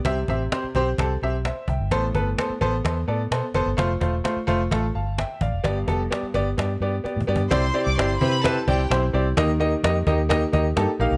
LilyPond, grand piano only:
<<
  \new Staff \with { instrumentName = "Grand piano" } { \time 4/4 \key a \minor \tempo 4 = 129 << { r2. <c'' e''>8 <e'' g''>8~ | <e'' g''>8 r2. r8 | r2 r8 <f'' a''>8 <e'' g''>8 <d'' f''>8~ | <d'' f''>8 r2. r8 |
r1 | r1 | } \\ { <c' g' e''>16 r16 <c' g' e''>16 r16 <c' g' c''>16 r16 <c' g' c''>16 r16 <c' g' a'>16 r16 <c' g' e''>16 r4 r16 | <b a' c''>16 r16 <b a' b'>16 r16 <b a' c''>16 r16 <b a' c''>16 r16 <b a' c''>16 r16 <b a' d''>16 r16 <b a' c''>16 r16 <b a' c''>16 r16 | <a f' c''>16 r16 <a f' c''>16 r16 <a f' c''>16 r16 <a f' c''>16 r16 <a f' a'>16 r4. r16 | <b g' d''>16 r16 <b g' a'>16 r16 <b g' d''>16 r16 <b g' d''>16 r16 <b g' d''>16 r16 <b g' d''>16 r16 <b g' d''>16 r16 <b g' d''>16 r16 |
<c' e' g' d''>16 r16 <c' e' g' d''>16 r16 <c' e' g' d''>16 r16 <c' e' g' c''>16 r16 <c' e' g' b'>16 r16 <c' e' g' d''>16 r16 <c' e' g' c''>16 r16 <c' e' g' d''>16 r16 | <bes ees' g' ees''>16 r16 <bes ees' g' ees''>16 r16 <bes ees' g' ees''>16 r16 <bes ees' g' ees''>16 r16 <bes ees' g' ees''>16 r16 <bes ees' g' ees''>16 r16 <bes ees' g' a'>16 r16 <bes ees' g' f''>16 r16 | } >> }
  \new Staff \with { instrumentName = "Grand piano" } { \clef bass \time 4/4 \key a \minor c4. r2 r8 | a,4. r2 r8 | r1 | g,4. r2 r8 |
c4. r2 r8 | ees4. r2 r8 | }
>>